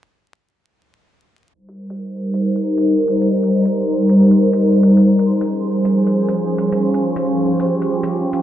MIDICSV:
0, 0, Header, 1, 3, 480
1, 0, Start_track
1, 0, Tempo, 437956
1, 1691, Time_signature, 4, 2, 24, 8
1, 9232, End_track
2, 0, Start_track
2, 0, Title_t, "Ambient pad"
2, 0, Program_c, 0, 92
2, 1698, Note_on_c, 0, 63, 66
2, 1698, Note_on_c, 0, 72, 79
2, 1699, Note_on_c, 0, 70, 68
2, 1702, Note_on_c, 0, 55, 73
2, 5496, Note_off_c, 0, 63, 0
2, 5497, Note_off_c, 0, 70, 0
2, 5498, Note_off_c, 0, 55, 0
2, 5525, Note_on_c, 0, 53, 75
2, 5526, Note_on_c, 0, 61, 67
2, 5528, Note_on_c, 0, 68, 68
2, 7430, Note_off_c, 0, 68, 0
2, 7452, Note_on_c, 0, 67, 69
2, 9232, Note_off_c, 0, 53, 0
2, 9232, Note_off_c, 0, 61, 0
2, 9232, Note_off_c, 0, 67, 0
2, 9232, Note_off_c, 0, 72, 0
2, 9232, End_track
3, 0, Start_track
3, 0, Title_t, "Drums"
3, 1847, Note_on_c, 9, 42, 28
3, 1957, Note_off_c, 9, 42, 0
3, 2082, Note_on_c, 9, 42, 52
3, 2192, Note_off_c, 9, 42, 0
3, 2564, Note_on_c, 9, 42, 52
3, 2673, Note_off_c, 9, 42, 0
3, 2804, Note_on_c, 9, 42, 28
3, 2914, Note_off_c, 9, 42, 0
3, 3044, Note_on_c, 9, 42, 52
3, 3153, Note_off_c, 9, 42, 0
3, 3374, Note_on_c, 9, 42, 40
3, 3483, Note_off_c, 9, 42, 0
3, 3526, Note_on_c, 9, 42, 51
3, 3635, Note_off_c, 9, 42, 0
3, 3763, Note_on_c, 9, 42, 29
3, 3873, Note_off_c, 9, 42, 0
3, 4004, Note_on_c, 9, 42, 53
3, 4114, Note_off_c, 9, 42, 0
3, 4486, Note_on_c, 9, 42, 53
3, 4596, Note_off_c, 9, 42, 0
3, 4727, Note_on_c, 9, 42, 29
3, 4837, Note_off_c, 9, 42, 0
3, 4967, Note_on_c, 9, 42, 52
3, 5077, Note_off_c, 9, 42, 0
3, 5296, Note_on_c, 9, 42, 41
3, 5406, Note_off_c, 9, 42, 0
3, 5448, Note_on_c, 9, 42, 52
3, 5558, Note_off_c, 9, 42, 0
3, 5690, Note_on_c, 9, 42, 29
3, 5799, Note_off_c, 9, 42, 0
3, 5930, Note_on_c, 9, 42, 53
3, 6040, Note_off_c, 9, 42, 0
3, 6412, Note_on_c, 9, 42, 51
3, 6522, Note_off_c, 9, 42, 0
3, 6650, Note_on_c, 9, 42, 28
3, 6760, Note_off_c, 9, 42, 0
3, 6888, Note_on_c, 9, 42, 51
3, 6998, Note_off_c, 9, 42, 0
3, 7216, Note_on_c, 9, 42, 41
3, 7326, Note_off_c, 9, 42, 0
3, 7369, Note_on_c, 9, 42, 51
3, 7478, Note_off_c, 9, 42, 0
3, 7609, Note_on_c, 9, 42, 28
3, 7718, Note_off_c, 9, 42, 0
3, 7849, Note_on_c, 9, 42, 51
3, 7958, Note_off_c, 9, 42, 0
3, 8326, Note_on_c, 9, 42, 52
3, 8435, Note_off_c, 9, 42, 0
3, 8568, Note_on_c, 9, 42, 28
3, 8678, Note_off_c, 9, 42, 0
3, 8805, Note_on_c, 9, 42, 49
3, 8914, Note_off_c, 9, 42, 0
3, 9131, Note_on_c, 9, 42, 40
3, 9232, Note_off_c, 9, 42, 0
3, 9232, End_track
0, 0, End_of_file